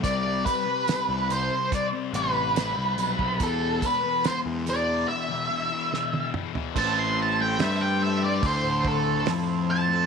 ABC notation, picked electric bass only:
X:1
M:4/4
L:1/16
Q:1/4=72
K:Am
V:1 name="Picked electric bass" clef=bass
C,,2 z3 C,,2 z3 A,,,3 C,, B,,,2 | E,,2 z3 E,,3 z8 | A,,,4 G,,4 D,,4 F,,4 |]